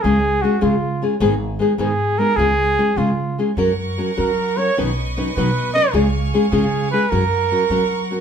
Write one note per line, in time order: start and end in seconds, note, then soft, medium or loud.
0.02 0.42 C#2 medium
0.02 0.16 C#3 medium
0.02 0.17 G#3 medium
0.02 0.17 C#4 medium
0.02 0.17 F4 medium
0.02 0.43 G#4 medium
0.02 0.17 G#4 medium
0.41 0.55 G#3 medium
0.41 0.55 C#4 medium
0.41 0.55 F4 medium
0.41 0.64 F#4 medium
0.41 0.56 G#4 medium
0.61 0.74 C#3 medium
0.61 1.00 C#3 medium
0.61 0.74 G#3 medium
0.61 0.74 C#4 medium
0.61 0.75 F4 medium
0.61 1.07 F4 medium
0.61 0.75 G#4 medium
1.02 1.13 G#3 medium
1.02 1.14 C#4 medium
1.02 1.14 F4 medium
1.02 1.14 G#4 medium
1.20 1.58 G#1 medium
1.20 1.33 G#2 medium
1.20 1.33 D#3 medium
1.20 1.33 G#3 medium
1.20 1.33 B3 medium
1.20 1.33 D#4 loud
1.20 1.33 G#4 medium
1.59 1.71 G#3 medium
1.59 1.71 B3 medium
1.59 1.72 D#4 medium
1.59 1.72 G#4 medium
1.78 1.91 G#2 medium
1.78 2.17 G#2 medium
1.78 1.91 D#3 medium
1.78 1.91 G#3 medium
1.78 1.91 B3 medium
1.78 1.91 D#4 medium
1.78 2.20 G#4 medium
1.78 1.92 G#4 medium
2.18 2.30 G#3 medium
2.18 2.30 B3 medium
2.18 2.31 D#4 medium
2.18 2.31 G#4 medium
2.18 2.38 A#4 loud
2.36 2.76 C#2 medium
2.36 2.51 C#3 medium
2.36 2.51 G#3 medium
2.36 2.51 C#4 medium
2.36 2.51 F4 medium
2.36 2.99 G#4 medium
2.36 2.51 G#4 medium
2.78 2.90 G#3 medium
2.78 2.90 C#4 medium
2.78 2.90 F4 medium
2.78 2.90 G#4 medium
2.96 3.36 C#3 medium
2.96 3.10 C#3 medium
2.96 3.10 G#3 medium
2.96 3.10 C#4 medium
2.96 3.43 F4 medium
2.96 3.10 F4 medium
2.96 3.10 G#4 medium
3.38 3.50 G#3 medium
3.38 3.50 C#4 soft
3.38 3.50 F4 medium
3.38 3.51 G#4 medium
3.57 3.96 F#2 medium
3.57 3.70 F#3 medium
3.57 3.70 C#4 medium
3.57 3.71 F#4 medium
3.57 3.71 A#4 medium
3.57 4.77 A#4 medium
3.57 4.77 F#5 soft
3.57 7.08 C#6 medium
3.98 4.10 F#3 medium
3.98 4.10 C#4 medium
3.98 4.11 F#4 medium
3.98 4.10 A#4 medium
4.17 4.30 F#3 medium
4.17 4.57 F#3 medium
4.17 4.30 C#4 medium
4.17 4.30 F#4 medium
4.17 4.30 A#4 medium
4.17 4.59 A#4 medium
4.56 4.68 F#3 medium
4.56 4.69 C#4 medium
4.56 4.69 F#4 medium
4.56 4.69 A#4 medium
4.56 4.77 C#5 loud
4.77 5.16 B1 medium
4.77 4.89 B2 medium
4.77 4.90 D#3 medium
4.77 4.90 F#3 medium
4.77 4.90 C#4 medium
4.77 4.90 D#4 medium
4.77 5.93 B4 medium
4.77 4.90 B4 medium
4.77 5.93 D#5 medium
5.17 5.28 F#3 medium
5.17 5.28 C#4 medium
5.17 5.28 D#4 medium
5.17 5.29 B4 medium
5.35 5.74 B2 medium
5.35 5.48 B2 medium
5.35 5.48 D#3 medium
5.35 5.49 F#3 medium
5.35 5.49 C#4 medium
5.35 5.48 D#4 medium
5.35 5.71 B4 medium
5.35 5.49 B4 medium
5.74 5.86 F#3 medium
5.74 5.86 C#4 medium
5.74 5.86 D#4 medium
5.74 5.87 B4 medium
5.74 5.92 D#5 loud
5.93 6.31 C#2 loud
5.93 6.05 C#3 medium
5.93 6.06 G#3 medium
5.93 6.06 C#4 medium
5.93 6.06 F4 medium
5.93 6.06 G#4 medium
5.93 7.10 G#4 medium
5.93 7.10 F5 medium
6.34 6.45 G#3 medium
6.34 6.45 C#4 medium
6.34 6.45 F4 medium
6.34 6.45 G#4 medium
6.51 6.64 C#3 medium
6.51 6.90 C#3 loud
6.51 6.64 G#3 medium
6.51 6.64 C#4 medium
6.51 6.65 F4 medium
6.51 6.88 G#4 medium
6.51 6.65 G#4 medium
6.91 7.03 G#3 medium
6.91 7.03 C#4 medium
6.91 7.04 F4 medium
6.91 7.04 G#4 medium
6.91 7.11 B4 loud
7.09 7.50 F#2 medium
7.09 7.23 F#3 medium
7.09 7.23 C#4 medium
7.09 7.24 F#4 medium
7.09 8.09 A#4 medium
7.09 8.21 A#4 medium
7.09 7.24 A#4 medium
7.09 8.21 F#5 medium
7.09 8.21 C#6 medium
7.52 7.63 F#3 medium
7.52 7.63 C#4 medium
7.52 7.63 F#4 medium
7.52 7.63 A#4 medium
7.70 8.09 F#3 medium
7.70 7.83 F#3 medium
7.70 7.83 C#4 medium
7.70 7.83 F#4 medium
7.70 7.83 A#4 medium
8.10 8.21 F#3 medium
8.10 8.21 C#4 soft
8.10 8.21 F#4 medium
8.10 8.21 A#4 medium